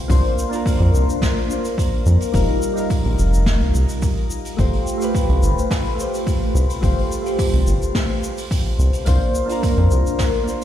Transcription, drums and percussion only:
0.10 kick loud
0.10 open hi-hat medium
0.10 shaker medium
0.24 open hi-hat medium
0.39 shaker medium
0.53 open hi-hat soft
0.53 shaker medium
0.66 kick loud
0.66 open hi-hat medium
0.66 shaker medium
0.80 open hi-hat soft
0.95 shaker medium
1.09 shaker medium
1.22 kick loud
1.22 snare medium
1.22 open hi-hat medium
1.22 shaker medium
1.36 open hi-hat soft
1.51 shaker loud
1.65 open hi-hat medium
1.65 shaker medium
1.78 kick loud
1.78 open hi-hat medium
1.78 shaker medium
1.93 open hi-hat soft
2.06 shaker medium
2.20 open hi-hat medium
2.20 shaker medium
2.33 kick loud
2.33 open hi-hat medium
2.33 shaker soft
2.48 open hi-hat soft
2.62 shaker medium
2.77 open hi-hat soft
2.77 shaker medium
2.90 kick loud
2.90 open hi-hat medium
2.90 shaker soft
3.04 open hi-hat soft
3.19 shaker medium
3.34 shaker medium
3.46 kick loud
3.46 snare medium
3.46 open hi-hat medium
3.46 shaker soft
3.59 open hi-hat soft
3.75 shaker medium
3.89 open hi-hat medium
3.89 shaker medium
4.02 kick loud
4.02 open hi-hat medium
4.02 shaker medium
4.17 open hi-hat soft
4.30 shaker medium
4.45 open hi-hat medium
4.45 shaker medium
4.58 kick loud
4.58 open hi-hat medium
4.58 shaker soft
4.73 open hi-hat medium
4.87 shaker medium
5.01 open hi-hat soft
5.01 shaker medium
5.15 kick loud
5.15 open hi-hat medium
5.15 shaker medium
5.29 open hi-hat soft
5.43 shaker medium
5.58 shaker medium
5.71 kick loud
5.71 snare medium
5.71 open hi-hat medium
5.71 shaker medium
5.84 open hi-hat medium
6.00 shaker medium
6.14 open hi-hat medium
6.14 shaker medium
6.27 kick loud
6.27 open hi-hat medium
6.27 shaker medium
6.42 open hi-hat soft
6.56 shaker medium
6.69 open hi-hat medium
6.69 shaker medium
6.83 kick loud
6.83 open hi-hat medium
6.83 shaker soft
6.98 open hi-hat soft
7.12 shaker medium
7.26 open hi-hat soft
7.26 shaker medium
7.39 kick loud
7.39 open hi-hat medium
7.39 shaker medium
7.53 open hi-hat soft
7.67 shaker medium
7.82 shaker medium
7.95 kick loud
7.95 snare medium
7.95 open hi-hat medium
7.95 shaker medium
8.09 open hi-hat soft
8.23 shaker medium
8.38 open hi-hat medium
8.38 shaker medium
8.51 kick loud
8.51 open hi-hat medium
8.51 shaker soft
8.66 open hi-hat soft
8.80 shaker medium
8.93 open hi-hat medium
8.93 shaker medium
9.06 kick loud
9.06 open hi-hat medium
9.06 shaker medium
9.21 open hi-hat soft
9.35 shaker medium
9.49 open hi-hat medium
9.49 shaker medium
9.63 kick loud
9.63 open hi-hat medium
9.63 shaker soft
9.77 open hi-hat medium
9.91 shaker medium
10.06 shaker medium
10.19 kick medium
10.19 snare medium
10.19 open hi-hat medium
10.19 shaker soft
10.33 open hi-hat medium
10.48 shaker medium

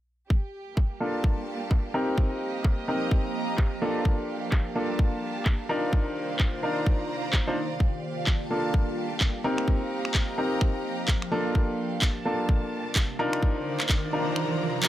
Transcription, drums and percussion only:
0.30 kick loud
0.77 kick loud
0.77 clap loud
1.24 kick loud
1.71 kick loud
1.71 clap loud
2.18 kick loud
2.64 kick loud
2.64 clap loud
3.11 kick loud
3.58 kick loud
3.58 clap loud
4.05 kick loud
4.52 kick loud
4.52 clap loud
4.99 kick loud
5.46 kick loud
5.46 clap loud
5.93 kick loud
6.39 kick loud
6.39 clap loud
6.86 kick loud
7.33 kick loud
7.33 clap loud
7.80 kick loud
8.27 kick loud
8.27 clap loud
8.74 kick loud
9.21 kick loud
9.21 clap loud
9.58 finger snap medium
9.68 kick loud
10.05 finger snap medium
10.14 kick loud
10.14 clap loud
10.61 finger snap medium
10.61 kick loud
11.08 kick loud
11.08 clap loud
11.22 finger snap soft
11.55 kick loud
12.02 kick loud
12.02 clap loud
12.49 kick loud
12.95 kick loud
12.95 clap loud
13.33 finger snap medium
13.43 kick loud
13.80 finger snap medium
13.80 clap medium
13.89 kick loud
13.89 clap loud
14.36 finger snap medium
14.83 clap loud

